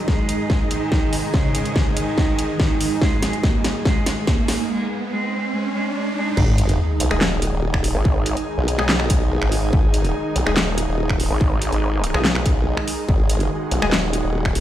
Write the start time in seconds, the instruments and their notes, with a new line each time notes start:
Already playing: supersaw synth G#2 D#3 G#3 D#4 D#5, analog synth pad D#4 G#4 A#5, riser
0.05 cello G#3, analog synth pad G#5, kick, snare
0.29 closed hi-hat
0.50 kick, snare
0.71 cello D#3, closed hi-hat
0.92 kick, snare
1.13 open hi-hat
1.34 cello C#3, kick, snare
1.55 closed hi-hat
1.65 closed hi-hat
1.76 kick, snare
1.97 cello D#3, closed hi-hat
2.18 kick, snare
2.39 closed hi-hat
2.60 cello D#3, kick, snare
2.81 open hi-hat
3.02 cello G#3, kick, snare
3.23 snare, closed hi-hat
3.33 closed hi-hat
3.43 cello A#3, kick, snare
3.64 snare, closed hi-hat
3.85 cello G#3, kick, snare
4.06 snare, closed hi-hat
4.27 cello A#3, kick, snare
4.48 snare, open hi-hat
4.69 cello G#3
5.11 cello G#3
5.53 cello G#3
5.74 cello G#3
5.95 cello G#3
6.16 cello G#3
6.37 wobble bass G#1, supersaw synth D#3 G#3 D#4, analog synth pad D#4, kick, crash, sub drop
6.58 closed hi-hat
6.63 analog synth pad G#4
6.69 closed hi-hat
7.00 wobble bass B1, closed hi-hat
7.11 wobble bass D#1, synth stab G#3 D#4 G#4, finger snap
7.21 snare, clap
7.42 closed hi-hat
7.53 wobble bass D#1
7.74 finger snap, kick
7.84 open hi-hat
7.95 wobble bass G#1
8.05 kick
8.26 closed hi-hat
8.37 closed hi-hat
8.58 wobble bass B1
8.68 closed hi-hat
8.79 synth stab G#3 D#4 G#4, finger snap
8.89 snare, clap
9.00 finger snap
9.10 kick, closed hi-hat
9.42 wobble bass G#1, finger snap
9.52 open hi-hat
9.73 wobble bass G#1, kick
9.94 closed hi-hat
10.05 closed hi-hat
10.36 wobble bass B1, closed hi-hat
10.47 wobble bass D#1, synth stab G#3 D#4 G#4, finger snap
10.57 snare, clap
10.78 closed hi-hat
10.88 wobble bass D#1
11.10 finger snap, kick
11.20 open hi-hat
11.31 wobble bass G#1
11.41 kick
11.62 closed hi-hat
11.72 wobble bass G#1, closed hi-hat
12.04 closed hi-hat
12.14 wobble bass B1, synth stab G#3 D#4 G#4, finger snap
12.25 snare, clap
12.35 finger snap
12.46 kick, closed hi-hat
12.77 finger snap
12.88 open hi-hat
13.09 wobble bass G#1, supersaw synth G#4, kick
13.29 closed hi-hat
13.34 analog synth pad F#4
13.40 closed hi-hat
13.71 wobble bass B1, closed hi-hat
13.82 wobble bass D#1, synth stab G#3 D#4 G#4, finger snap
13.92 snare, clap
14.13 closed hi-hat
14.24 wobble bass D#1
14.45 finger snap, kick
14.55 open hi-hat